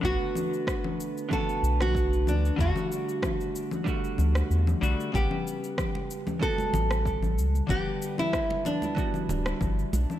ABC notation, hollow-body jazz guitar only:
X:1
M:4/4
L:1/8
Q:"Swing 16ths" 1/4=94
K:Glyd
V:1 name="Hollow-body jazz guitar"
[D,A,B,F]4 [D,A,B,F]4 | [D,G,A,F]4 [D,G,A,F]3 [D,G,A,F] | [C,G,B,f]4 [C,G,B,F]4 | [D,G,B,f]4 [D,G,B,F]3 z |]